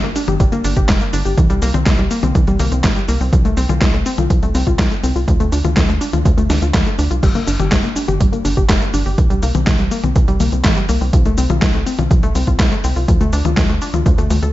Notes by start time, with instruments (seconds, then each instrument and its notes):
0.03 analog synth bass G1, synth arpeggio sound A#3, closed hi-hat
0.16 synth arpeggio sound D4, open hi-hat, cabasa
0.28 analog synth bass G1, synth arpeggio sound G4, closed hi-hat, high tom, cabasa
0.40 analog synth bass G1, synth arpeggio sound G3, kick, closed hi-hat, cabasa
0.52 analog synth bass G1, synth arpeggio sound A#3, closed hi-hat, cabasa
0.64 analog synth bass G1, synth arpeggio sound D4, open hi-hat, cabasa
0.77 analog synth bass G1, synth arpeggio sound G4, kick, closed hi-hat, cabasa
0.89 analog synth bass F1, synth arpeggio sound G3, kick, snare, clap, closed hi-hat, cabasa
1.01 synth arpeggio sound A#3, closed hi-hat, cabasa
1.13 analog synth bass G1, synth arpeggio sound D4, open hi-hat, cabasa
1.25 analog synth bass G1, synth arpeggio sound G4, cabasa
1.38 analog synth bass C2, synth arpeggio sound E3, kick, closed hi-hat, cabasa
1.50 analog synth bass C2, synth arpeggio sound G3, closed hi-hat, cabasa
1.62 analog synth bass C2, synth arpeggio sound A#3, open hi-hat, cabasa
1.74 analog synth bass C2, synth arpeggio sound C4, closed hi-hat, high tom, cabasa
1.86 analog synth bass C2, synth arpeggio sound E3, kick, snare, clap, closed hi-hat, cabasa
1.99 analog synth bass C2, synth arpeggio sound G3, closed hi-hat
2.11 synth arpeggio sound A#3, open hi-hat, cabasa
2.23 analog synth bass C2, synth arpeggio sound C4, closed hi-hat, high tom, cabasa
2.35 analog synth bass C2, synth arpeggio sound E3, kick, closed hi-hat, cabasa
2.47 analog synth bass C2, synth arpeggio sound G3, closed hi-hat, cabasa
2.60 analog synth bass C2, synth arpeggio sound A#3, open hi-hat, high tom, cabasa
2.72 analog synth bass C2, synth arpeggio sound C4, closed hi-hat, cabasa
2.84 analog synth bass A#1, synth arpeggio sound E3, kick, snare, clap, closed hi-hat, cabasa
2.96 synth arpeggio sound G3, closed hi-hat, cabasa
3.08 analog synth bass C2, synth arpeggio sound A#3, open hi-hat, cabasa
3.21 analog synth bass C2, synth arpeggio sound C4, cabasa
3.33 analog synth bass C2, synth arpeggio sound F3, kick, closed hi-hat, cabasa
3.45 analog synth bass C2, synth arpeggio sound A3, closed hi-hat, cabasa
3.57 analog synth bass C2, synth arpeggio sound C4, open hi-hat, cabasa
3.69 analog synth bass C2, synth arpeggio sound F4, closed hi-hat, high tom, cabasa
3.81 analog synth bass C2, synth arpeggio sound F3, kick, snare, clap, closed hi-hat, cabasa
3.94 analog synth bass C2, synth arpeggio sound A3, closed hi-hat
4.06 synth arpeggio sound C4, open hi-hat, cabasa
4.18 analog synth bass C2, synth arpeggio sound F4, high tom, cabasa
4.30 analog synth bass C2, synth arpeggio sound F3, kick, closed hi-hat, cabasa
4.42 analog synth bass C2, synth arpeggio sound A3, closed hi-hat, cabasa
4.55 analog synth bass C2, synth arpeggio sound C4, open hi-hat, cabasa
4.67 analog synth bass C2, synth arpeggio sound F4, kick, cabasa
4.79 analog synth bass C2, synth arpeggio sound F3, kick, snare, clap, closed hi-hat, cabasa
4.91 synth arpeggio sound A3, closed hi-hat, cabasa
5.03 analog synth bass C2, synth arpeggio sound C4, open hi-hat, cabasa
5.16 analog synth bass C2, synth arpeggio sound F4, cabasa
5.28 analog synth bass D2, synth arpeggio sound F3, kick, closed hi-hat, cabasa
5.40 analog synth bass D2, synth arpeggio sound A3, closed hi-hat, cabasa
5.52 analog synth bass D2, synth arpeggio sound D4, open hi-hat, cabasa
5.65 analog synth bass D2, synth arpeggio sound F4, closed hi-hat, high tom, cabasa
5.77 analog synth bass D2, synth arpeggio sound F3, kick, snare, clap, closed hi-hat, cabasa
5.89 analog synth bass D2, synth arpeggio sound A3, closed hi-hat, cabasa
6.01 synth arpeggio sound D4, open hi-hat, cabasa
6.13 analog synth bass D2, synth arpeggio sound F4, closed hi-hat, high tom, cabasa
6.25 analog synth bass D2, synth arpeggio sound F3, kick, closed hi-hat, cabasa
6.38 analog synth bass D2, synth arpeggio sound A3, closed hi-hat, cabasa
6.50 analog synth bass D2, synth arpeggio sound D4, snare, open hi-hat, high tom, cabasa
6.62 analog synth bass D2, synth arpeggio sound F4, closed hi-hat, cabasa
6.74 analog synth bass D2, synth arpeggio sound F3, kick, snare, clap, closed hi-hat, cabasa
6.87 synth arpeggio sound A3, closed hi-hat, cabasa
6.99 analog synth bass D2, synth arpeggio sound D4, open hi-hat, cabasa
7.11 analog synth bass C2, synth arpeggio sound F4, closed hi-hat, cabasa
7.23 analog synth bass G1, synth arpeggio sound G3, kick, closed hi-hat, crash, cabasa
7.35 analog synth bass G1, synth arpeggio sound A#3, closed hi-hat, cabasa
7.47 analog synth bass G1, synth arpeggio sound D4, open hi-hat, cabasa
7.60 analog synth bass G1, synth arpeggio sound G4, high tom, cabasa
7.72 analog synth bass G1, synth arpeggio sound G3, kick, snare, clap, closed hi-hat, cabasa
7.84 analog synth bass G1, synth arpeggio sound A#3, closed hi-hat
7.96 synth arpeggio sound D4, open hi-hat, cabasa
8.08 analog synth bass G1, synth arpeggio sound G4, closed hi-hat, high tom, cabasa
8.20 analog synth bass G1, synth arpeggio sound G3, kick, closed hi-hat, cabasa
8.33 analog synth bass G1, synth arpeggio sound A#3, closed hi-hat, cabasa
8.45 analog synth bass G1, synth arpeggio sound D4, open hi-hat, cabasa
8.57 analog synth bass G1, synth arpeggio sound G4, kick, cabasa
8.69 analog synth bass F1, synth arpeggio sound G3, kick, snare, clap, closed hi-hat, cabasa
8.82 synth arpeggio sound A#3, closed hi-hat, cabasa
8.94 analog synth bass G1, synth arpeggio sound D4, open hi-hat, cabasa
9.06 analog synth bass G1, synth arpeggio sound G4, cabasa
9.18 analog synth bass C2, synth arpeggio sound E3, kick, closed hi-hat, cabasa
9.30 analog synth bass C2, synth arpeggio sound G3, closed hi-hat, cabasa
9.42 analog synth bass C2, synth arpeggio sound A#3, open hi-hat, cabasa
9.55 analog synth bass C2, synth arpeggio sound C4, closed hi-hat, high tom, cabasa
9.67 analog synth bass C2, synth arpeggio sound E3, kick, snare, clap, closed hi-hat, cabasa
9.79 analog synth bass C2, synth arpeggio sound G3, closed hi-hat
9.91 synth arpeggio sound A#3, open hi-hat, cabasa
10.04 analog synth bass C2, synth arpeggio sound C4, closed hi-hat, high tom, cabasa
10.16 analog synth bass C2, synth arpeggio sound E3, kick, closed hi-hat, cabasa
10.28 analog synth bass C2, synth arpeggio sound G3, closed hi-hat, cabasa
10.40 analog synth bass C2, synth arpeggio sound A#3, open hi-hat, high tom, cabasa
10.52 analog synth bass C2, synth arpeggio sound C4, closed hi-hat, cabasa
10.64 analog synth bass A#1, synth arpeggio sound E3, kick, snare, clap, closed hi-hat, cabasa
10.77 synth arpeggio sound G3, closed hi-hat, cabasa
10.89 analog synth bass C2, synth arpeggio sound A#3, open hi-hat, cabasa
11.01 analog synth bass C2, synth arpeggio sound C4, cabasa
11.13 analog synth bass C2, synth arpeggio sound F3, kick, closed hi-hat, cabasa
11.25 analog synth bass C2, synth arpeggio sound A3, closed hi-hat, cabasa
11.38 analog synth bass C2, synth arpeggio sound C4, open hi-hat, cabasa
11.50 analog synth bass C2, synth arpeggio sound F4, closed hi-hat, high tom, cabasa
11.62 analog synth bass C2, synth arpeggio sound F3, kick, snare, clap, closed hi-hat, cabasa
11.74 analog synth bass C2, synth arpeggio sound A3, closed hi-hat
11.86 synth arpeggio sound C4, open hi-hat, cabasa
11.99 analog synth bass C2, synth arpeggio sound F4, closed hi-hat, high tom, cabasa
12.11 analog synth bass C2, synth arpeggio sound F3, kick, closed hi-hat, cabasa
12.23 analog synth bass C2, synth arpeggio sound A3, closed hi-hat, cabasa
12.35 analog synth bass C2, synth arpeggio sound C4, open hi-hat, cabasa
12.47 analog synth bass C2, synth arpeggio sound F4, kick, cabasa
12.59 analog synth bass C2, synth arpeggio sound F3, kick, snare, clap, closed hi-hat, cabasa
12.72 synth arpeggio sound A3, closed hi-hat, cabasa
12.84 analog synth bass C2, synth arpeggio sound C4, open hi-hat, cabasa
12.96 analog synth bass C2, synth arpeggio sound F4, cabasa
13.08 analog synth bass D2, synth arpeggio sound F3, kick, closed hi-hat, cabasa
13.21 analog synth bass D2, synth arpeggio sound A3, closed hi-hat, cabasa
13.33 analog synth bass D2, synth arpeggio sound D4, open hi-hat, cabasa
13.45 analog synth bass D2, synth arpeggio sound F4, closed hi-hat, high tom, cabasa
13.57 analog synth bass D2, synth arpeggio sound F3, kick, snare, clap, closed hi-hat, cabasa
13.69 analog synth bass D2, synth arpeggio sound A3, closed hi-hat
13.82 synth arpeggio sound D4, open hi-hat, cabasa
13.94 analog synth bass D2, synth arpeggio sound F4, closed hi-hat, high tom, cabasa
14.06 analog synth bass D2, synth arpeggio sound F3, kick, closed hi-hat, cabasa
14.18 analog synth bass D2, synth arpeggio sound A3, closed hi-hat, cabasa
14.30 analog synth bass D2, synth arpeggio sound A3, open hi-hat, high tom, cabasa
14.42 analog synth bass D2, synth arpeggio sound A4, closed hi-hat, cabasa